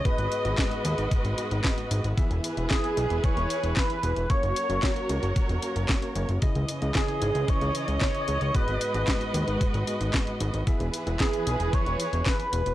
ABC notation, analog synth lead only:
X:1
M:4/4
L:1/8
Q:1/4=113
K:G#m
V:1 name="Analog synth lead"
B4 z4 | z2 G2 c2 B2 | c4 z4 | z2 G2 c2 c2 |
B4 z4 | z2 G2 c2 B2 |]